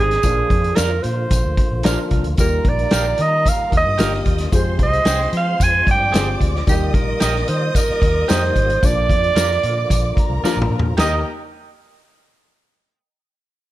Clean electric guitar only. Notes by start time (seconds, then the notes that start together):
0.75 A#4 D5 F5
1.84 A#4 D5 F5
2.91 G4 A#4 F5
3.98 G4 A#4 F5
5.05 G#4 C5 G5
6.12 G#4 C5 G5
7.20 G4 A#4 D#5
8.28 G4 A#4 D#5
9.35 F4 A#4 D5
10.44 F4 A#4 D5
10.97 G4 A#4 D#5